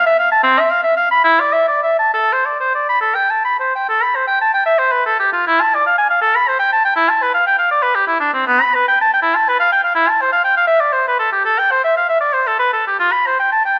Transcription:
0.07 E5
0.19 F5
0.32 A5
0.43 C4
0.59 E5
0.71 F5
0.83 E5
0.97 F5
1.11 B5
1.24 E4
1.40 D5
1.53 E5
1.68 D5
1.83 E5
1.99 A5
2.14 A4
2.33 C5
2.46 D5
2.60 C5
2.75 D5
2.89 B5
3.01 A4
3.15 G5
3.30 A5
3.45 B5
3.59 C5
3.75 G5
3.89 A4
4.02 B5
4.16 C5
4.27 G5
4.41 A5
4.54 G5
4.66 E5
4.79 C5
4.92 B4
5.06 A4
5.20 G4
5.33 F4
5.47 E4
5.61 A5
5.75 D5
5.86 F5
5.98 G#5
6.10 F5
6.22 A4
6.36 B5
6.48 C5
6.59 G5
6.73 A5
6.85 G5
6.96 E4
7.09 A5
7.22 B4
7.34 F5
7.47 G5
7.59 F5
7.71 D5
7.83 B4
7.95 G4
8.07 E4
8.20 D4
8.34 C4
8.47 B3
8.62 B5
8.75 B4
8.88 G5
9.01 A5
9.13 G5
9.22 E4
9.36 A5
9.49 B4
9.60 F5
9.72 G5
9.84 F5
9.95 E4
10.09 A5
10.21 C5
10.32 F5
10.44 G5
10.57 F5
10.67 E5
10.80 D5
10.93 C5
11.08 B4
11.19 A4
11.32 G4
11.45 A4
11.59 G5
11.71 C5
11.84 E5
11.97 F5
12.09 E5
12.21 D5
12.34 C5
12.47 A4
12.59 B4
12.73 A4
12.87 G4
13.00 F4
13.12 B5
13.27 C5
13.39 G5
13.52 A5
13.65 G5

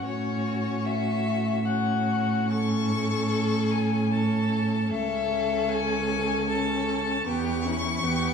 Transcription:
0.05 A2 C#4 F#4 C#5
0.85 E5
1.66 C#4 F#4 F#5
2.51 C#4 A4 C#6
3.71 G#5
4.12 C#4 A4 A5
4.90 C#2 C#4 A4 E5
5.69 G#5
6.49 C#4 A4 A5
7.26 E2 B3 G4 C#6
7.65 C#4 E4
8.03 E2 B3 G4

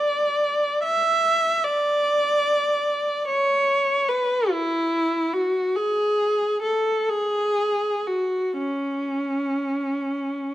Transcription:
Already playing: D5
0.83 E5
1.64 D5
3.28 C#5
4.09 B4
4.50 E4
5.34 F#4
5.76 G#4
6.63 A4
7.10 G#4
8.07 F#4
8.58 C#4

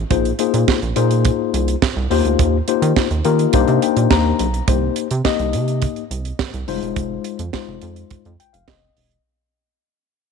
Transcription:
0.10 A#1 A#3 D#4 F4 G#4 C5, kick, closed hi-hat
0.25 closed hi-hat
0.39 A#3 D#4 F4 G#4 C5, closed hi-hat
0.54 A#2, closed hi-hat
0.68 kick, snare
0.82 A#1, closed hi-hat
0.96 A#2 A#3 D#4 F4 G#4 C5, closed hi-hat
1.11 closed hi-hat
1.25 kick, closed hi-hat
1.54 C2, closed hi-hat
1.68 closed hi-hat
1.82 kick, snare
1.96 C2
2.11 D#2 A#3 D#4 F4 G4 C5, open hi-hat
2.25 D2, closed hi-hat
2.39 D#2, kick, closed hi-hat
2.68 A#3 D#4 F4 G4 C5, closed hi-hat
2.82 D#3, closed hi-hat
2.96 kick, snare
3.11 D#2, closed hi-hat
3.25 D#3 A#3 D#4 F4 G4 A#4, closed hi-hat
3.39 closed hi-hat
3.53 C2 A#3 D4 D#4 G4 C5, kick, closed hi-hat
3.68 C3, closed hi-hat
3.82 G5, closed hi-hat
3.97 A#2, closed hi-hat
4.11 D#2 A#5, kick, snare
4.39 B1, closed hi-hat
4.54 closed hi-hat
4.68 C2 A#3 D#4 G4 C5, kick, closed hi-hat
4.96 closed hi-hat
5.11 C3, closed hi-hat
5.24 A#3 D#4 G4 D#5, kick, snare
5.39 C2, closed hi-hat
5.53 C3, closed hi-hat
5.68 closed hi-hat
5.82 kick, closed hi-hat
5.96 closed hi-hat
6.11 C2, closed hi-hat
6.25 closed hi-hat
6.39 kick, snare
6.54 C2, closed hi-hat
6.68 F1 G3 D#4 F4 C5, open hi-hat
6.74 G#3
6.82 E1, closed hi-hat
6.96 F1, kick, closed hi-hat
7.24 closed hi-hat
7.39 F2, closed hi-hat
7.53 G#3 D#4 F4 C5, kick, snare
7.68 F1
7.82 F2, closed hi-hat
7.96 closed hi-hat
8.10 F2, kick, closed hi-hat
8.25 F2, closed hi-hat
8.40 G5, closed hi-hat
8.53 F1 F5, closed hi-hat
8.68 F1 D#5, kick, snare
8.97 E1, open hi-hat
9.11 closed hi-hat

